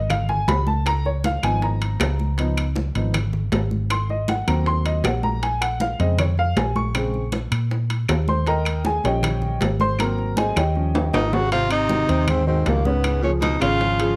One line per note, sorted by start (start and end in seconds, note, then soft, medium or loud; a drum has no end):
0.00 0.44 G#1 loud
0.10 0.29 F5 medium
0.10 high bongo medium
0.10 high conga soft
0.10 low conga medium
0.10 high timbale medium
0.10 claves medium
0.29 0.48 G#5 loud
0.29 high conga soft
0.29 low conga medium
0.48 1.37 C#2 medium
0.48 0.67 B5 loud
0.48 high bongo medium
0.48 low bongo medium
0.48 high conga medium
0.48 high timbale medium
0.48 low timbale medium
0.67 0.86 A5 medium
0.67 high conga medium
0.86 1.05 A#5 loud
0.86 high bongo medium
0.86 high conga soft
0.86 high timbale medium
0.86 claves medium
1.05 1.24 C#5 medium
1.05 high bongo soft
1.05 high conga soft
1.24 1.43 F5 medium
1.24 high bongo medium
1.24 high conga medium
1.24 high timbale medium
1.24 low timbale medium
1.43 1.96 G#1 loud
1.43 2.37 F3 medium
1.43 2.38 B3 soft
1.43 2.38 D#4 medium
1.43 1.62 G#5 medium
1.43 high timbale medium
1.43 claves medium
1.62 2.73 A#5 medium
1.62 high bongo medium
1.62 high conga soft
1.81 high bongo soft
1.81 high conga soft
1.81 high timbale medium
2.00 2.90 C#2 loud
2.00 high bongo medium
2.00 low bongo medium
2.00 high conga soft
2.00 high timbale loud
2.00 low timbale medium
2.00 claves medium
2.19 high bongo soft
2.19 high conga medium
2.38 2.56 F3 medium
2.38 2.64 B3 medium
2.38 2.64 D#4 medium
2.38 high bongo medium
2.38 high conga soft
2.38 high timbale medium
2.57 high conga soft
2.57 high timbale medium
2.57 claves medium
2.76 high bongo medium
2.76 high conga medium
2.76 low timbale medium
2.95 3.48 G#1 loud
2.95 3.13 F3 medium
2.95 3.13 B3 soft
2.95 3.13 D#4 medium
2.95 high conga soft
2.95 high timbale medium
3.14 high bongo medium
3.14 high conga soft
3.14 low conga medium
3.14 high timbale loud
3.14 claves medium
3.33 high conga soft
3.33 low conga medium
3.52 4.42 G#1 loud
3.52 high bongo medium
3.52 low bongo medium
3.52 high conga medium
3.52 high timbale medium
3.52 low timbale medium
3.71 high conga medium
3.90 4.09 C6 medium
3.90 high bongo medium
3.90 high conga soft
3.90 high timbale medium
3.90 claves medium
4.09 4.28 D#5 medium
4.09 high bongo soft
4.09 high conga soft
4.28 4.47 F#5 medium
4.28 high bongo medium
4.28 high conga medium
4.28 high timbale medium
4.28 low timbale medium
4.47 5.01 D#2 loud
4.47 5.39 F#3 medium
4.47 5.39 A#3 medium
4.47 5.39 C4 medium
4.47 4.66 A#5 medium
4.47 high timbale medium
4.47 claves medium
4.66 4.85 C6 loud
4.66 high bongo medium
4.66 high conga soft
4.85 5.04 D#5 medium
4.85 high bongo soft
4.85 high conga soft
4.85 high timbale medium
5.04 5.93 A#1 medium
5.04 5.23 F#5 medium
5.04 high bongo medium
5.04 low bongo medium
5.04 high conga soft
5.04 high timbale loud
5.04 low timbale medium
5.04 claves medium
5.23 5.42 A#5 loud
5.23 high bongo soft
5.23 high conga medium
5.43 5.61 G#5 medium
5.43 high bongo medium
5.43 high conga soft
5.43 high timbale medium
5.61 5.80 F#5 medium
5.61 high conga soft
5.61 high timbale medium
5.61 claves medium
5.80 5.99 F5 medium
5.80 high bongo medium
5.80 high conga medium
5.80 low timbale soft
5.99 6.53 F2 loud
5.99 6.25 C#3 medium
5.99 6.25 G#3 soft
5.99 6.26 C4 medium
5.99 6.19 D#5 medium
5.99 high conga soft
5.99 high timbale medium
6.19 6.38 C#5 medium
6.19 high bongo medium
6.19 high conga soft
6.19 low conga medium
6.19 high timbale medium
6.19 claves medium
6.38 6.57 F5 loud
6.38 high conga soft
6.56 7.46 A#1 medium
6.56 6.76 G#5 medium
6.56 high bongo medium
6.56 low bongo medium
6.56 high conga medium
6.56 high timbale medium
6.56 low timbale medium
6.76 7.29 C#6 loud
6.76 high conga medium
6.94 7.20 C#3 medium
6.94 7.20 G#3 medium
6.94 7.21 C4 medium
6.94 high bongo medium
6.94 high timbale loud
6.94 claves medium
7.14 high bongo soft
7.14 high conga soft
7.32 high bongo medium
7.32 high conga medium
7.32 high timbale medium
7.32 low timbale medium
7.51 8.05 A#2 loud
7.51 high timbale medium
7.51 claves medium
7.71 high bongo medium
7.71 high conga soft
7.90 high bongo soft
7.90 high conga soft
7.90 high timbale medium
8.09 8.98 D#2 loud
8.09 high bongo medium
8.09 low bongo medium
8.09 high conga soft
8.09 high timbale medium
8.09 low timbale medium
8.09 claves medium
8.28 8.47 C5 medium
8.28 8.47 C6 medium
8.28 high bongo soft
8.28 high conga medium
8.47 8.83 A#4 medium
8.47 8.83 D#5 medium
8.47 8.83 G5 medium
8.47 8.83 A#5 medium
8.47 high bongo medium
8.47 high timbale medium
8.65 high conga soft
8.65 high timbale medium
8.65 claves medium
8.85 9.05 G#4 medium
8.85 9.04 G#5 medium
8.85 high bongo medium
8.85 high conga medium
8.85 low timbale medium
9.04 9.57 A#1 medium
9.04 9.59 F3 medium
9.04 9.59 G3 medium
9.04 9.59 C#4 medium
9.04 9.58 G4 medium
9.04 9.58 C#5 medium
9.04 9.58 D#5 medium
9.04 9.58 G5 medium
9.04 high conga soft
9.04 high timbale medium
9.23 high bongo medium
9.23 high conga soft
9.23 low conga medium
9.23 high timbale loud
9.23 claves medium
9.42 high conga soft
9.42 low conga medium
9.61 10.51 G#1 loud
9.61 high bongo medium
9.61 low bongo medium
9.61 high conga medium
9.61 high timbale medium
9.61 low timbale medium
9.80 9.99 C5 medium
9.80 9.99 C6 loud
9.80 high conga medium
9.99 10.54 F#3 medium
9.99 10.54 A#3 medium
9.99 10.54 C4 medium
9.99 10.36 A#4 medium
9.99 10.35 A#5 loud
9.99 high bongo medium
9.99 high conga soft
9.99 high timbale loud
9.99 claves medium
10.18 high bongo soft
10.18 high conga soft
10.37 10.56 G#4 medium
10.37 10.56 C5 medium
10.37 10.56 D#5 medium
10.37 10.56 G#5 medium
10.37 high bongo medium
10.37 high conga medium
10.37 high timbale medium
10.37 low timbale medium
10.56 11.10 D#2 loud
10.56 11.10 G4 medium
10.56 11.10 C#5 medium
10.56 11.10 D#5 medium
10.56 11.10 G5 medium
10.56 high bongo medium
10.56 high timbale medium
10.56 claves medium
10.75 11.30 F3 soft
10.75 11.30 G3 soft
10.75 11.30 C#4 medium
10.75 high conga soft
10.94 low bongo medium
10.94 high conga soft
10.94 high timbale loud
11.14 12.03 G#1 loud
11.14 11.34 A#2 medium
11.14 11.35 D#4 medium
11.14 low bongo medium
11.14 high timbale loud
11.14 claves medium
11.33 11.50 C#3 medium
11.33 11.52 F#4 loud
11.33 low bongo medium
11.33 low timbale medium
11.51 11.69 C3 medium
11.51 11.83 C3 medium
11.51 11.83 C4 medium
11.51 11.70 F4 loud
11.51 11.83 C5 medium
11.51 high bongo medium
11.51 high conga soft
11.51 high timbale medium
11.69 12.29 C3 medium
11.69 12.30 D#4 loud
11.69 high conga soft
11.69 high timbale medium
11.69 claves medium
11.89 12.06 D#3 medium
11.89 12.06 D#4 medium
11.89 12.06 F#4 medium
11.89 high bongo medium
11.89 high conga medium
11.89 low timbale medium
12.09 12.62 D#2 loud
12.09 12.40 C3 medium
12.09 12.40 C4 medium
12.09 12.41 C5 medium
12.09 high conga soft
12.09 high timbale medium
12.27 12.45 G#2 medium
12.27 12.47 C4 medium
12.27 high bongo medium
12.27 high conga soft
12.27 low conga medium
12.27 high timbale medium
12.27 claves medium
12.46 12.66 G#2 medium
12.46 12.78 D#3 medium
12.46 12.69 C4 medium
12.46 12.78 D#4 medium
12.46 12.79 F#4 medium
12.46 high conga soft
12.65 13.56 C#2 medium
12.65 12.85 F#2 medium
12.65 12.87 A#3 medium
12.65 high bongo medium
12.65 low bongo medium
12.65 high conga medium
12.65 high timbale medium
12.65 low timbale medium
12.84 13.21 G#2 medium
12.84 13.17 C#3 medium
12.84 13.23 B3 medium
12.84 13.17 C#4 medium
12.84 13.17 C#5 medium
12.84 high conga medium
13.04 high bongo medium
13.04 high conga soft
13.04 high timbale medium
13.04 claves medium
13.21 13.30 A#2 medium
13.21 13.55 F3 medium
13.21 13.32 C#4 medium
13.21 13.55 F4 medium
13.21 13.55 G#4 medium
13.21 high bongo soft
13.21 high conga soft
13.40 13.59 B2 medium
13.40 13.60 D#4 medium
13.40 high bongo medium
13.40 high conga medium
13.40 high timbale medium
13.40 low timbale medium
13.59 14.15 G#1 loud
13.59 14.16 C#3 medium
13.59 13.77 C#3 medium
13.59 13.77 C#4 medium
13.59 14.16 F4 loud
13.59 13.78 C#5 medium
13.59 high timbale medium
13.59 claves medium
13.80 13.96 F3 medium
13.80 13.96 F4 medium
13.80 13.96 G#4 medium
13.80 high bongo medium
13.80 high conga soft
13.99 14.16 F3 medium
13.99 14.16 F4 medium
13.99 14.16 G#4 medium
13.99 high bongo soft
13.99 high conga soft
13.99 high timbale medium